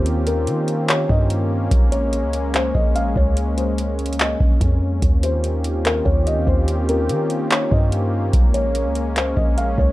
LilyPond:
<<
  \new Staff \with { instrumentName = "Felt piano" } { \time 4/4 \key bes \dorian \tempo 4 = 145 r8 bes'4. des''8 ees''4. | r8 des''4. c''8 ees''8 f''8 des''8 | r8 c''4. ees''4 r4 | r8 c''4. bes'8 des''8 ees''8 c''8 |
r8 bes'4. des''8 ees''4. | r8 des''4. c''8 ees''8 f''8 des''8 | }
  \new Staff \with { instrumentName = "Analog synth pad" } { \time 4/4 \key bes \dorian << { <ees c' des' f' g'>1 | aes1~ | aes1 | <ees c' f' g'>1~ |
<ees c' f' g'>1 | <aes des'>1 | } \\ { bes1~ | bes1~ | bes1 | bes1~ |
bes1~ | bes1 | } >> }
  \new Staff \with { instrumentName = "808-style bass" } { \clef bass \time 4/4 \key bes \dorian ees,4 ees4. g,4. | bes,,4~ bes,,16 des,4~ des,16 bes,,4 des,8~ | des,2~ des,8 bes,,8 f,4 | ees,2~ ees,8 ees,8 des,16 ees,16 ees,8~ |
ees,4 ees4. g,4. | bes,,4~ bes,,16 des,4~ des,16 bes,,4 des,8 | }
  \new DrumStaff \with { instrumentName = "Drums" } \drummode { \time 4/4 hh8 hh8 hh8 hh8 <hc hh>8 bd8 hh4 | <hh bd>8 hh8 hh8 hh8 <hc hh>8 bd8 hh8 bd8 | hh8 hh8 \tuplet 3/2 { hh16 r16 r16 <hh hho>16 hh16 hh16 } <hc hh>8 bd8 <hh bd>4 | <hh bd>8 hh8 hh8 hh8 <hc hh>8 bd8 hh8 bd8 |
hh8 hh8 hh8 hh8 <hc hh>8 bd8 hh4 | <hh bd>8 hh8 hh8 hh8 <hc hh>8 bd8 hh8 bd8 | }
>>